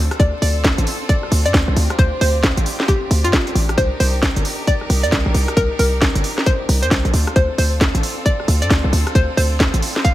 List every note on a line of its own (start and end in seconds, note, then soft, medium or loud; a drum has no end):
0.00 3.74 C4 medium
0.00 10.14 D4 medium
0.00 3.74 F4 medium
0.00 1.75 A4 medium
0.00 0.13 C5 loud
0.11 cross-stick medium
0.11 closed hi-hat soft
0.20 0.31 D2 loud
0.20 0.35 D5 loud
0.20 kick loud
0.20 closed hi-hat medium
0.42 0.75 D2 medium
0.42 0.70 D5 medium
0.42 open hi-hat loud
0.64 kick loud
0.64 snare loud
0.64 closed hi-hat medium
0.78 0.85 A1 loud
0.78 closed hi-hat medium
0.87 open hi-hat medium
1.09 1.30 D5 medium
1.09 kick loud
1.09 closed hi-hat medium
1.23 cross-stick soft
1.32 1.47 D2 loud
1.32 open hi-hat loud
1.45 1.53 G2 medium
1.45 1.92 D5 loud
1.45 closed hi-hat medium
1.54 1.65 D2 medium
1.54 kick loud
1.54 snare loud
1.54 closed hi-hat medium
1.68 1.75 C2 loud
1.76 1.88 D2 loud
1.76 7.10 G4 medium
1.76 open hi-hat medium
1.90 cross-stick medium
1.90 closed hi-hat soft
1.99 2.10 D2 loud
1.99 2.14 C5 loud
1.99 kick loud
1.99 closed hi-hat medium
2.21 2.54 D2 medium
2.21 2.49 C5 medium
2.21 open hi-hat loud
2.43 kick loud
2.43 snare loud
2.43 closed hi-hat medium
2.57 2.65 A1 loud
2.57 closed hi-hat medium
2.66 open hi-hat medium
2.80 snare medium
2.88 3.09 G4 medium
2.88 kick loud
2.88 closed hi-hat medium
3.11 3.26 D2 loud
3.11 open hi-hat loud
3.24 3.32 G2 medium
3.24 3.71 F4 loud
3.24 closed hi-hat medium
3.33 kick loud
3.33 snare loud
3.33 closed hi-hat medium
3.47 closed hi-hat soft
3.55 3.75 A1 loud
3.55 open hi-hat medium
3.69 cross-stick medium
3.69 closed hi-hat soft
3.78 3.89 C2 loud
3.78 7.10 D#4 medium
3.78 7.10 A#4 medium
3.78 3.93 C5 loud
3.78 kick loud
3.78 closed hi-hat medium
4.00 4.33 C2 medium
4.00 4.28 C5 medium
4.00 open hi-hat loud
4.23 kick loud
4.23 snare loud
4.23 closed hi-hat medium
4.36 4.44 G1 loud
4.36 closed hi-hat medium
4.45 open hi-hat medium
4.67 4.88 D5 medium
4.67 kick loud
4.67 closed hi-hat medium
4.81 cross-stick soft
4.90 5.05 C2 loud
4.90 open hi-hat loud
5.03 5.11 F2 medium
5.03 5.50 D5 loud
5.03 closed hi-hat medium
5.12 5.24 C2 medium
5.12 kick loud
5.12 snare loud
5.12 closed hi-hat medium
5.26 5.33 A#1 loud
5.34 5.46 C2 loud
5.34 open hi-hat medium
5.48 cross-stick medium
5.48 closed hi-hat soft
5.57 5.68 C2 loud
5.57 5.72 A#4 loud
5.57 kick loud
5.57 closed hi-hat medium
5.79 6.12 C2 medium
5.79 6.07 A#4 medium
5.79 open hi-hat loud
6.02 kick loud
6.02 snare loud
6.02 closed hi-hat medium
6.15 6.23 G1 medium
6.15 closed hi-hat medium
6.24 open hi-hat medium
6.38 snare medium
6.46 6.67 C5 medium
6.46 kick loud
6.46 closed hi-hat medium
6.69 6.84 C2 loud
6.69 open hi-hat loud
6.82 6.90 F2 medium
6.82 7.29 C5 loud
6.82 closed hi-hat medium
6.91 7.03 C2 medium
6.91 kick loud
6.91 snare loud
6.91 closed hi-hat medium
7.05 7.12 A#1 loud
7.05 closed hi-hat soft
7.14 7.25 D2 loud
7.14 10.14 C4 medium
7.14 10.14 F4 medium
7.14 10.14 A4 medium
7.14 open hi-hat loud
7.27 cross-stick medium
7.27 closed hi-hat soft
7.36 7.48 D2 loud
7.36 7.51 C5 loud
7.36 kick loud
7.36 closed hi-hat medium
7.58 7.91 D2 medium
7.58 7.86 C5 medium
7.58 open hi-hat loud
7.81 kick loud
7.81 snare loud
7.81 closed hi-hat medium
7.95 8.02 A1 medium
7.95 closed hi-hat medium
8.03 open hi-hat loud
8.26 8.46 D5 loud
8.26 kick loud
8.26 closed hi-hat medium
8.40 cross-stick soft
8.48 8.63 D2 loud
8.48 open hi-hat loud
8.62 8.69 G2 medium
8.62 9.08 D5 loud
8.62 closed hi-hat medium
8.70 8.82 D2 medium
8.70 kick loud
8.70 snare loud
8.70 closed hi-hat medium
8.84 8.91 C2 loud
8.93 9.04 D2 loud
8.93 open hi-hat loud
9.07 cross-stick medium
9.07 closed hi-hat soft
9.15 9.27 D2 loud
9.15 9.31 C5 loud
9.15 kick loud
9.15 closed hi-hat medium
9.37 9.70 D2 medium
9.37 9.65 C5 medium
9.37 open hi-hat loud
9.60 kick loud
9.60 snare loud
9.60 closed hi-hat medium
9.74 9.81 A1 loud
9.74 closed hi-hat medium
9.82 open hi-hat loud
9.96 snare medium
10.04 10.14 F5 medium
10.04 kick loud
10.04 closed hi-hat medium